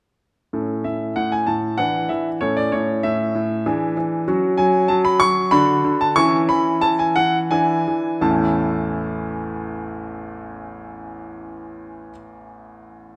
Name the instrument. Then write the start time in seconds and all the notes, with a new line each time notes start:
grand piano
0.53 A2 C#4 A4
0.84 A2 E5
1.16 A2 F#5
1.32 G#5
1.47 A2 A5
1.78 E3 D4 B4 F#5
2.09 E3 E5
2.41 A2 C#4 A4 C#5
2.57 D5
2.72 A2 C#5
3.03 A2 E5
3.35 A2
3.66 E3 D4 G#4
3.97 E3
4.28 F#3 C#4 F#4
4.57 F#3 G#5
4.88 F#3 A5
5.05 B5
5.20 F#3 C#6
5.51 D3 D4 F#4 B5
5.84 D3
6.01 A5
6.16 E3 C#4 E4 C#6
6.49 E3 B5
6.81 E3 A5
6.99 G#5
7.16 E3 F#5
7.51 E3 D4 E4 G#5
7.88 E3
8.21 A1 E2 E3 A3 C#4 E4 A5